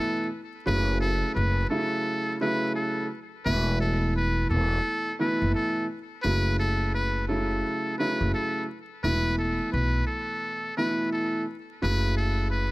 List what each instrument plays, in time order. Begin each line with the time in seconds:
Already playing: upright piano B2 E3 A3 E4, muted trumpet A4
0.66 upright bass F#1, upright piano C#3 F#3 A3 E4, muted trumpet B4
1.00 muted trumpet A4
1.35 upright bass F#1, muted trumpet B4
1.70 upright piano C#3 F#3 A3 E4, muted trumpet A4
2.41 upright piano C#3 F#3 A3 E4, muted trumpet B4
2.76 muted trumpet A4
3.45 upright bass E1, upright piano B2 E3 A3 E4, muted trumpet B4
3.81 muted trumpet A4
4.16 muted trumpet B4
4.50 upright bass E1, muted trumpet A4
5.19 upright piano B2 E3 A3 E4, muted trumpet B4
5.42 upright bass F#1
5.55 muted trumpet A4
6.23 upright bass F#1, upright piano C#3 F#3 A3 E4, muted trumpet B4
6.60 muted trumpet A4
6.94 muted trumpet B4
7.28 upright piano C#3 F#3 A3 E4, muted trumpet A4
7.99 upright piano C#3 F#3 A3 E4, muted trumpet B4
8.21 upright bass F#1
8.34 muted trumpet A4
9.04 upright bass E1, upright piano B2 E3 A3 E4, muted trumpet B4
9.38 muted trumpet A4
9.72 upright bass B1, muted trumpet B4
10.07 muted trumpet A4
10.77 upright piano B2 E3 A3 E4, muted trumpet B4
11.13 muted trumpet A4
11.82 upright bass F#1, upright piano C#3 F#3 A3 E4, muted trumpet B4
12.17 muted trumpet A4
12.51 muted trumpet B4